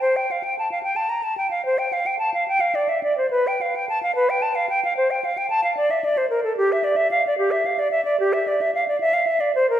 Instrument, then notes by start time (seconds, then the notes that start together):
flute
0.01 C5
0.16 G5
0.31 F5
0.44 G5
0.59 A5
0.72 F5
0.83 G5
0.96 A5
1.09 A#5
1.23 A5
1.38 G5
1.51 F5
1.65 C5
1.79 G5
1.93 F5
2.06 G5
2.19 A5
2.34 F5
2.48 G5
2.60 F5
2.75 D5
2.89 E5
3.03 D5
3.17 C5
3.31 B4
3.47 G5
3.61 F5
3.76 G5
3.89 A5
4.03 F5
4.15 B4
4.30 G5
4.42 A5
4.55 F5
4.69 G5
4.85 F5
4.97 C5
5.11 G5
5.24 F5
5.38 G5
5.50 A5
5.64 F5
5.77 D5
5.91 E5
6.04 D5
6.17 C5
6.30 A#4
6.44 A4
6.57 G4
6.72 E5
6.84 D5
6.96 E5
7.11 F5
7.27 D5
7.38 G4
7.51 E5
7.66 F5
7.79 D5
7.91 E5
8.05 D5
8.20 G4
8.33 E5
8.48 D5
8.61 E5
8.75 F5
8.88 D5
9.00 E5
9.14 F5
9.27 E5
9.40 D5
9.55 C5
9.70 A#4